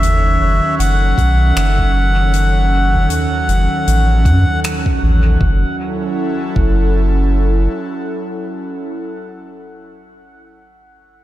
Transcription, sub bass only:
Already playing: F#1
0.41 F#1
0.79 F#1
1.18 B1
1.56 F#1
3.48 F#1
3.87 A1
4.25 F#2
5.02 A1
5.41 F#1
6.56 F#1

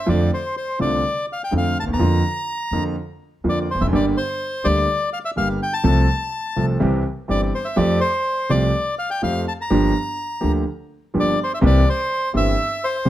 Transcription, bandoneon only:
0.09 D5
0.34 C5
0.57 C5
0.81 D5
1.33 F5
1.44 G5
1.57 F5
1.80 A5
1.93 A#5
3.49 D5
3.71 C5
3.81 E5
3.95 D5
4.17 C5
4.65 D5
5.13 F5
5.25 E5
5.37 F5
5.63 G5
5.73 A5
7.30 D5
7.55 C5
7.65 E5
7.77 D5
8.00 C5
8.50 D5
8.99 F5
9.10 G5
9.23 F5
9.48 A5
9.61 A#5
11.20 D5
11.44 C5
11.54 E5
11.66 D5
11.89 C5
12.37 E5
12.84 C5

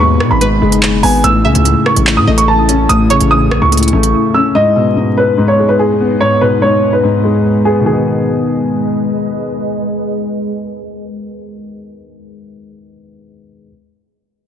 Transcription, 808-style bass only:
Already playing: D#2
0.20 B2
0.31 G#1
0.62 F#1
1.03 G#1
1.24 A1
1.45 C#2
1.55 C#2
1.96 A1
2.17 A2
2.27 A1
2.89 A1
3.20 A1
3.62 C#2
3.93 A1

